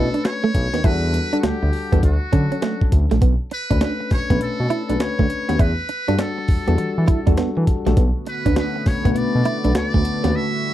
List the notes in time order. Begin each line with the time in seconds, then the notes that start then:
Already playing: A3 C#4 D4 A4 B4
0.14 D4, closed hi-hat
0.25 C#5, snare, closed hi-hat
0.44 A3
0.54 B1, muted clean electric guitar stroke, kick, closed hi-hat
0.74 D#2 B3, snare, closed hi-hat
0.84 E2 G3 D4 E4 F#4 A4 B4, kick, closed hi-hat
1.14 muted clean electric guitar stroke, closed hi-hat
1.33 G3 D4 A4 F#5, closed hi-hat
1.40 D2 A3 F#4, snare, closed hi-hat
1.44 G4
1.63 D2, muted clean electric guitar stroke
1.73 open hi-hat
1.92 E2 G3 B3 D4 F#4 A4, kick, closed hi-hat
2.03 D2 F#4, muted clean electric guitar stroke, kick, closed hi-hat
2.32 D3 F#3 C#4 D4 A4, kick, closed hi-hat
2.52 C#4, closed hi-hat
2.62 A3, snare, closed hi-hat
2.81 muted clean electric guitar stroke, kick
2.92 D2, kick, closed hi-hat
3.11 A#1 A3, snare, closed hi-hat
3.22 B1 B3, kick, closed hi-hat
3.51 B4, muted clean electric guitar stroke, closed hi-hat
3.70 D2 A3 C#4 D4 B4, kick, closed hi-hat
3.81 D4 B4, snare, closed hi-hat
4.00 muted clean electric guitar stroke
4.11 B1 C#5, kick, snare, open hi-hat
4.30 B1 A3 B3 C#4 D4 B4, kick, closed hi-hat
4.41 B2 A4, muted clean electric guitar stroke, closed hi-hat
4.60 B2
4.70 E4, closed hi-hat
4.89 B1 A3 C#4 D4 B4, closed hi-hat
5.00 D2 C#5, snare, closed hi-hat
5.19 D2 A3, kick
5.30 muted clean electric guitar stroke, closed hi-hat
5.48 D#2 A3 B3 C#4 D4 B4, snare, closed hi-hat
5.59 E2 E4 B4, kick, closed hi-hat
5.89 muted clean electric guitar stroke, closed hi-hat
6.08 G2 G3 D4 F#4 A4, closed hi-hat
6.19 D4 A4, snare, closed hi-hat
6.38 muted clean electric guitar stroke
6.48 E2, kick, open hi-hat
6.67 E2 G3 B3 D4 F#4 A4, closed hi-hat
6.78 E3, muted clean electric guitar stroke, closed hi-hat
6.98 E3
7.08 E4, kick, closed hi-hat
7.26 E2 G3 D4 F#4 A4, kick, closed hi-hat
7.37 B3, snare, closed hi-hat
7.57 E3, muted clean electric guitar stroke
7.67 kick, closed hi-hat
7.86 A#1 G3 A3 D4 F#4 A4, snare, closed hi-hat
7.97 B1 D3 A3 B3 F#4, kick, closed hi-hat
8.26 B4, muted clean electric guitar stroke, closed hi-hat
8.45 D2 A3 C#4 D4 B4, kick, closed hi-hat
8.56 D4 B4, snare, closed hi-hat
8.76 muted clean electric guitar stroke
8.86 B1 C#5, kick, snare, open hi-hat
9.04 B1 A3 B3 D4 B4, kick, closed hi-hat
9.12 B2 C#5, muted clean electric guitar stroke, closed hi-hat
9.17 D5
9.35 B2
9.45 E4, closed hi-hat
9.64 B1 A3 B3 D4 B4, closed hi-hat
9.75 D2 D5, snare, closed hi-hat
9.94 D2 A3, kick
10.05 muted clean electric guitar stroke, closed hi-hat
10.23 D#2 A3 B3 C#4 D4 B4, snare, closed hi-hat
10.35 G3 E4 E5